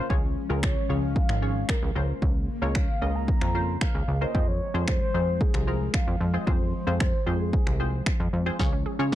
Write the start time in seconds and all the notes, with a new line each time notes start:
0.10 C#2 F3 G#3 C#4 F4 G#4 C#5, kick
0.49 C#2 C#4 F4 G#4 A#4
0.63 C#5, finger snap, kick
0.89 C#2 C#4 F4 G#4 C#5
1.03 F5
1.16 F5, kick
1.29 G#1, finger snap
1.42 C#4 F4 G#4 C#5
1.69 A#4, finger snap, kick
1.83 C#2
1.95 C#2 C#3 A#3 C#4 F4 A#4 C5
2.22 C#2, kick
2.62 C#2 C#4 F4 A#4 C#5
2.75 F5, finger snap, kick
3.02 C#2 C#4 F4 A#4 D#5
3.15 A#5
3.28 kick
3.41 F2, finger snap
3.55 C#4 F4 A#4 C5
3.81 F5, finger snap, kick
3.95 C#2
4.08 C#2
4.21 C#4 F4 A#4 C5 D#5
4.34 F2 F3 G#3 C4 F4 G#4 C5, kick
4.48 C#5
4.74 F2 C4 F4 G#4 C5
4.88 C5, finger snap, kick
5.01 C5
5.14 F2 C4 F4 G#4 C5
5.41 G#4, kick
5.54 C2, finger snap
5.67 C4 F4 G#4 A#4
5.94 F5, finger snap, kick
6.08 F2
6.21 F2
6.34 C4 F4 G#4 C5 D#5
6.47 F2 C4 F4 G#4 C5, kick
6.87 F2 C4 F4 G#4 C5
7.00 finger snap, kick
7.26 F2 C4 F4 G#4 C5
7.40 G#4
7.53 kick
7.67 C2, finger snap
7.80 C4 F4 G#4 C5
8.06 finger snap, kick
8.20 F2
8.33 F2
8.46 C4 F4 G#4 C5
8.59 C#2 F3 G#3 C#4 F4 G#4 C#5, kick, snare
8.73 C#4
8.86 G#4
8.99 C#3 C#4 F4 G#4 C#5